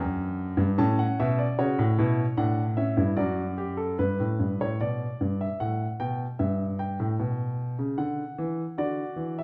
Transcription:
0.00 0.58 F#2 medium
0.00 0.76 D4 medium
0.00 0.75 G5 medium
0.57 0.78 G2 medium
0.78 1.04 A2 medium
0.78 1.56 C#4 medium
0.78 0.98 A5 medium
0.99 1.19 F#5 medium
1.20 1.44 B2 medium
1.20 1.39 E5 medium
1.39 1.58 D5 medium
1.59 1.78 C#3 medium
1.59 1.83 F#4 medium
1.59 2.36 C#5 medium
1.79 1.98 A2 medium
1.98 2.23 B2 medium
1.98 2.24 E4 medium
2.37 2.96 A2 medium
2.37 2.63 D4 medium
2.37 2.62 F#5 medium
2.77 2.97 C#4 medium
2.77 3.02 E5 medium
2.97 3.17 G2 medium
2.97 3.17 E4 medium
3.17 3.96 F#2 medium
3.17 3.42 F#4 medium
3.17 3.95 D5 medium
3.58 3.78 G4 medium
3.77 3.97 A4 medium
3.99 4.18 G2 soft
3.99 4.57 B4 medium
4.20 4.39 A2 medium
4.40 4.58 G2 soft
4.61 4.79 A2 medium
4.61 4.79 C#5 medium
4.80 5.05 B2 soft
4.80 5.38 D5 medium
5.21 5.45 G2 medium
5.41 5.59 E5 medium
5.60 5.85 A2 medium
5.60 5.85 F#5 medium
6.00 6.24 B2 medium
6.00 6.24 G5 medium
6.39 6.97 G2 medium
6.39 6.64 E5 medium
6.79 7.94 G5 medium
7.00 7.19 A2 medium
7.19 7.77 B2 medium
7.79 7.98 C#3 medium
7.98 8.22 D3 medium
7.98 8.74 F#5 medium
8.38 8.63 E3 medium
8.78 9.02 D3 medium
8.78 9.44 F#4 medium
8.78 9.35 D5 medium
9.16 9.41 E3 medium
9.39 9.44 E5 medium

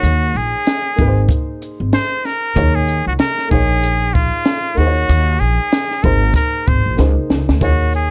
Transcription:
0.00 0.31 D#2 loud
0.00 0.94 A#3 medium
0.00 0.95 D#4 medium
0.00 0.38 F#4 loud
0.00 0.96 G#4 medium
0.00 0.97 C#5 medium
0.00 closed hi-hat medium
0.35 0.51 A#1 medium
0.35 1.31 G#4 loud
0.35 shaker medium
0.67 snare loud
0.67 closed hi-hat medium
0.96 1.26 G#1 medium
0.96 2.52 A#3 medium
0.96 2.53 D#4 medium
0.96 2.54 G#4 medium
0.96 kick medium
0.96 shaker medium
1.01 1.08 B4 medium
1.08 2.58 C5 medium
1.29 kick medium
1.29 closed hi-hat medium
1.62 closed hi-hat medium
1.62 shaker medium
1.80 1.91 G#1 medium
1.93 2.27 C5 loud
1.93 snare loud
1.93 closed hi-hat medium
2.25 2.77 A#4 loud
2.25 snare soft
2.25 shaker soft
2.55 3.00 D#2 loud
2.55 3.47 A#3 medium
2.55 3.48 D#4 medium
2.55 3.50 G#4 medium
2.55 3.52 C#5 medium
2.55 kick loud
2.55 closed hi-hat medium
2.75 3.07 G#4 medium
2.88 closed hi-hat soft
2.88 shaker medium
3.06 3.18 C#2 medium
3.06 3.13 F#4 medium
3.19 3.49 A#4 loud
3.19 snare loud
3.19 closed hi-hat medium
3.38 snare soft
3.48 4.29 A#1 medium
3.48 4.73 A#3 medium
3.48 4.74 D#4 medium
3.48 4.15 G#4 loud
3.48 4.75 G#4 medium
3.48 kick medium
3.48 shaker medium
3.54 4.76 C#5 medium
3.83 closed hi-hat medium
4.14 4.79 F4 medium
4.14 kick medium
4.14 shaker medium
4.45 snare loud
4.45 closed hi-hat medium
4.75 5.05 D#2 medium
4.75 6.00 A#3 medium
4.75 6.01 D#4 medium
4.75 5.41 F#4 medium
4.75 6.02 G#4 medium
4.75 shaker soft
4.80 4.86 C5 medium
4.87 6.06 C#5 medium
5.09 5.37 D#2 loud
5.09 closed hi-hat medium
5.40 5.57 A#1 medium
5.40 6.05 G#4 loud
5.40 shaker soft
5.72 snare loud
5.72 closed hi-hat medium
5.91 snare soft
6.03 6.31 G#1 loud
6.03 6.96 A#3 medium
6.03 6.97 D#4 medium
6.03 6.98 G#4 medium
6.03 6.35 A#4 medium
6.03 6.99 C5 medium
6.03 kick medium
6.03 shaker medium
6.34 6.69 A#4 loud
6.34 kick medium
6.34 closed hi-hat medium
6.67 6.84 G#1 medium
6.67 6.99 C5 medium
6.67 kick medium
6.67 shaker medium
6.86 6.97 A#1 medium
6.97 7.15 C#2 loud
6.97 7.58 A#3 medium
6.97 7.59 D#4 medium
6.97 7.60 G#4 medium
6.97 7.62 C5 medium
6.97 snare medium
7.30 7.46 C#2 medium
7.30 snare medium
7.49 7.60 D2 medium
7.49 snare loud
7.60 8.11 D#2 loud
7.60 8.11 A#3 medium
7.60 8.11 D#4 medium
7.60 7.92 F#4 medium
7.60 8.11 G#4 medium
7.60 8.11 C#5 medium
7.60 kick loud
7.60 closed hi-hat medium
7.93 8.11 G#4 medium
7.93 shaker soft

